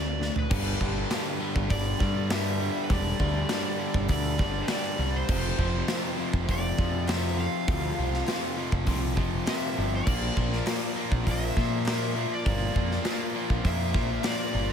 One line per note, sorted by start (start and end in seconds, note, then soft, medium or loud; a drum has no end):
0.00 0.29 D2 medium
0.00 0.17 D3 medium
0.00 0.17 C4 medium
0.00 0.33 D5 medium
0.19 0.47 D3 medium
0.19 0.48 A3 medium
0.19 snare medium
0.36 1.68 B4 medium
0.36 floor tom medium
0.50 0.74 G1 loud
0.50 0.79 G2 medium
0.50 0.79 D3 loud
0.50 0.81 G3 loud
0.50 kick loud
0.50 crash loud
0.80 1.04 G1 loud
0.80 1.09 G2 medium
0.80 1.09 D3 medium
0.80 1.10 G3 loud
0.80 kick medium
1.09 1.39 G2 medium
1.09 1.39 D3 loud
1.09 1.40 G3 loud
1.09 snare loud
1.09 clap loud
1.09 open hi-hat soft
1.39 1.68 G2 medium
1.39 1.68 D3 medium
1.39 1.69 G3 medium
1.56 1.67 G1 medium
1.56 kick medium
1.69 1.93 G1 medium
1.69 1.97 G2 medium
1.69 1.98 D3 medium
1.69 1.99 G3 medium
1.69 2.27 D5 medium
1.69 kick loud
1.69 open hi-hat medium
1.98 2.29 G2 loud
1.98 2.68 G2 medium
1.98 2.29 D3 loud
1.98 2.29 G3 loud
1.98 kick medium
1.98 snare soft
2.04 2.29 G2 medium
2.30 2.59 G2 medium
2.30 2.60 D3 medium
2.30 2.60 G3 loud
2.30 2.81 E5 medium
2.30 snare loud
2.30 clap loud
2.30 open hi-hat medium
2.61 2.88 G2 medium
2.61 2.89 D3 medium
2.61 2.89 G3 loud
2.84 2.90 B4 medium
2.89 3.13 E1 loud
2.89 3.18 G2 medium
2.89 3.18 D3 medium
2.89 3.19 G3 medium
2.89 4.09 D5 loud
2.89 kick loud
2.89 open hi-hat medium
3.19 3.43 D2 loud
3.19 3.49 G2 medium
3.19 3.49 D3 medium
3.19 3.50 G3 medium
3.19 kick medium
3.49 3.78 G2 medium
3.49 3.78 D3 medium
3.49 3.78 G3 loud
3.49 snare medium
3.49 clap loud
3.49 open hi-hat medium
3.79 4.07 G2 medium
3.79 4.08 D3 medium
3.79 4.08 G3 loud
3.94 4.06 G1 medium
3.94 kick medium
4.08 4.40 D2 loud
4.08 4.36 G2 medium
4.08 4.37 D3 medium
4.08 4.37 G3 loud
4.08 4.64 D5 loud
4.08 kick loud
4.08 open hi-hat medium
4.37 4.62 G1 medium
4.37 4.68 G2 loud
4.37 4.68 D3 loud
4.37 4.68 G3 loud
4.37 kick medium
4.37 snare soft
4.42 4.68 G2 medium
4.62 4.69 B4 medium
4.68 4.97 G2 medium
4.68 4.97 D3 loud
4.68 4.98 G3 medium
4.68 5.16 D5 loud
4.68 snare loud
4.68 clap medium
4.68 open hi-hat medium
4.98 5.22 C2 loud
4.98 5.27 G2 medium
4.98 5.27 D3 medium
4.98 5.27 G3 medium
5.16 6.46 C5 medium
5.28 5.52 F1 loud
5.28 5.58 F2 medium
5.28 5.58 C3 medium
5.28 5.59 F3 loud
5.28 kick loud
5.28 crash loud
5.58 5.81 F1 loud
5.58 5.88 F2 medium
5.58 5.88 C3 medium
5.58 5.89 F3 medium
5.58 kick medium
5.88 6.17 F2 medium
5.88 6.17 C3 loud
5.88 6.18 F3 loud
5.88 snare loud
5.88 clap medium
5.88 open hi-hat soft
6.17 6.47 F2 medium
6.17 6.47 C3 medium
6.17 6.48 F3 loud
6.33 6.45 F1 medium
6.33 kick medium
6.48 6.71 F1 medium
6.48 6.78 F2 medium
6.48 6.78 C3 medium
6.48 6.80 F3 loud
6.48 7.06 D5 loud
6.48 kick loud
6.48 open hi-hat medium
6.78 7.46 F2 medium
6.78 7.07 F2 loud
6.78 7.08 C3 loud
6.78 7.09 F3 loud
6.78 kick medium
7.08 7.37 F2 medium
7.08 7.37 C3 medium
7.08 7.39 F3 medium
7.08 7.39 E5 loud
7.08 snare loud
7.08 clap medium
7.08 open hi-hat medium
7.38 7.67 F2 medium
7.38 7.67 C3 medium
7.38 7.69 F3 medium
7.38 8.54 F5 loud
7.68 7.90 D2 loud
7.68 7.97 F2 medium
7.68 7.97 C3 loud
7.68 7.99 F3 loud
7.68 kick loud
7.68 open hi-hat medium
7.98 8.21 C2 loud
7.98 8.26 F2 medium
7.98 8.27 C3 medium
7.98 8.28 F3 medium
8.14 snare soft
8.27 8.55 F2 loud
8.27 8.55 C3 loud
8.27 8.57 F3 loud
8.27 snare medium
8.27 clap medium
8.27 open hi-hat medium
8.56 8.85 F2 medium
8.56 8.86 C3 medium
8.56 8.86 F3 medium
8.72 8.84 F1 medium
8.72 kick medium
8.86 9.19 C2 loud
8.86 9.15 F2 medium
8.86 9.15 C3 medium
8.86 9.17 F3 medium
8.86 kick medium
8.86 open hi-hat medium
9.16 9.40 F1 medium
9.16 9.45 F2 loud
9.16 9.46 C3 loud
9.16 9.47 F3 loud
9.16 kick medium
9.46 9.74 F2 medium
9.46 9.75 C3 medium
9.46 9.76 F3 medium
9.46 9.90 E5 medium
9.46 snare loud
9.46 clap medium
9.46 open hi-hat medium
9.75 10.00 G1 loud
9.75 10.04 F2 medium
9.75 10.04 C3 medium
9.75 10.05 F3 loud
9.96 11.32 D5 medium
10.05 10.29 A#1 loud
10.05 10.36 A#2 medium
10.05 10.37 F3 loud
10.05 10.37 A#3 loud
10.05 kick loud
10.05 crash loud
10.37 10.60 A#1 loud
10.37 10.66 A#2 medium
10.37 10.66 F3 loud
10.37 10.67 A#3 medium
10.37 kick medium
10.52 snare soft
10.66 10.95 A#2 loud
10.66 10.96 F3 loud
10.66 10.96 A#3 loud
10.66 snare medium
10.66 clap medium
10.66 open hi-hat medium
10.96 11.23 A#2 medium
10.96 11.25 F3 medium
10.96 11.24 A#3 loud
11.11 11.23 A#1 medium
11.11 kick medium
11.24 11.49 A#1 medium
11.24 11.55 A#2 medium
11.24 11.56 F3 medium
11.24 11.56 A#3 loud
11.24 kick loud
11.24 open hi-hat medium
11.31 11.84 E5 loud
11.56 11.85 A#2 loud
11.56 12.24 A#2 medium
11.56 11.87 F3 loud
11.56 11.86 A#3 loud
11.56 kick medium
11.56 snare soft
11.85 12.14 A#2 medium
11.85 12.15 F3 medium
11.85 12.15 A#3 loud
11.85 snare loud
11.85 clap medium
11.85 open hi-hat medium
11.90 12.30 E5 loud
12.16 12.43 A#2 medium
12.16 12.45 F3 medium
12.16 12.44 A#3 medium
12.34 13.70 D5 medium
12.44 12.69 G1 loud
12.44 12.72 A#2 loud
12.44 12.73 F3 loud
12.44 12.73 A#3 medium
12.44 kick loud
12.44 open hi-hat medium
12.73 12.98 F2 loud
12.73 13.02 A#2 medium
12.73 13.04 F3 medium
12.73 13.04 A#3 medium
12.73 kick medium
12.91 snare soft
13.04 13.33 A#2 loud
13.04 13.34 F3 medium
13.04 13.34 A#3 loud
13.04 snare medium
13.04 clap medium
13.04 open hi-hat soft
13.34 13.62 A#2 medium
13.34 13.64 F3 medium
13.34 13.63 A#3 loud
13.50 13.61 A#1 medium
13.50 kick medium
13.63 13.96 F2 loud
13.63 13.93 A#2 medium
13.63 13.94 F3 medium
13.63 13.94 A#3 loud
13.63 14.21 E5 loud
13.63 kick loud
13.63 open hi-hat medium
13.94 14.17 A#1 medium
13.94 14.20 A#2 loud
13.94 14.22 F3 loud
13.94 14.22 A#3 loud
13.94 kick medium
13.94 snare soft
14.22 14.51 A#2 medium
14.22 14.52 F3 medium
14.22 14.52 A#3 medium
14.22 snare loud
14.22 clap loud
14.22 open hi-hat medium
14.26 14.71 D5 medium
14.52 14.73 G1 loud
14.52 14.73 A#2 medium
14.52 14.73 F3 medium
14.52 14.73 A#3 loud